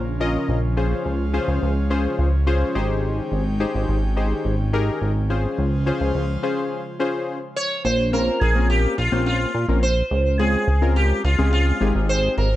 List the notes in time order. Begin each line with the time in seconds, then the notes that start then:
Already playing: A#1 C#3 F3 A#3 C#4 F4
0.20 C#4 F4 A#4 D#5
0.49 A#1
0.77 G#3 C#4 F4 G#4 C5
1.05 C#2
1.33 C#4 F4 G#4 C5
1.48 C#2
1.62 C#2
1.90 C#4 F4 G#4 C5
2.19 C#2
2.47 C#4 F4 G#4 C5
2.75 G#1 D#3 D#4 G4 G#4 C5 G5
3.32 G#1
3.60 D#4 G4 G#4 C5
3.74 G#1
3.88 G#1
4.17 D#4 G4 G#4 C5
4.45 G#1
4.73 D#4 G4 G#4 A#4
5.02 G#1
5.30 C#3 F3 G#3 C#4 F4 G#4 C5
5.58 C#2
5.86 C#4 F4 G#4 C5
6.01 C#2
6.15 C#2
6.43 C#4 F4 G#4 C5
7.00 C#4 F4 G#4 C5
7.56 C#5
7.85 A#1 C5
8.13 A#3 C4 C#4 F4 A#4
8.41 A#1 G#4
8.55 A#3 C4 C#4 F4 A#4
8.70 G4
8.98 A#1 F4
9.12 A#1 A#3 C4 C#4 F4 C5
9.26 F4
9.54 A#2
9.68 A#1 A#3 C4 C#4 F4 A#4
9.83 C5
10.11 C#2
10.39 G#3 C4 C#4 F4 G#4
10.68 C#2
10.82 G#3 C4 C#4 F4 A#4
10.96 G4
11.24 C#2 F4
11.38 C#2 G#3 C4 C#4 F4 G#4
11.53 F4
11.81 G#1 G#3 C4 D#4 G4 G#4
11.95 G#1
12.09 C5
12.37 G#1 A#4